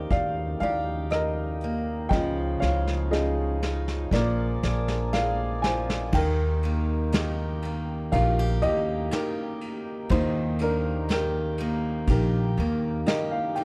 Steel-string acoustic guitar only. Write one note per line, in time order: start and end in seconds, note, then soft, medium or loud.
0.00 2.12 D#3 medium
0.00 1.63 A#3 soft
0.00 0.62 G4 medium
0.63 2.22 G4 medium
1.64 2.23 A#3 soft
2.13 3.12 F3 medium
2.63 4.23 G#3 medium
3.13 4.11 F3 medium
3.63 4.22 D#4 medium
4.12 5.63 F3 medium
4.63 6.24 D4 medium
5.13 6.24 G#3 medium
5.65 6.15 F3 soft
6.15 10.10 D#3 medium
6.65 7.65 A#3 medium
7.14 8.13 G4 medium
7.65 8.63 A#3 soft
8.14 8.39 F4 medium
8.39 9.11 G4 medium
8.63 10.61 A#3 medium
9.13 11.11 G4 medium
10.12 13.64 D#3 medium
10.62 11.60 A#3 medium
11.11 12.09 G4 medium
11.61 12.58 A#3 medium
12.10 13.08 G4 medium
12.60 13.64 A#3 medium
13.09 13.64 G4 medium
13.57 13.64 D#4 medium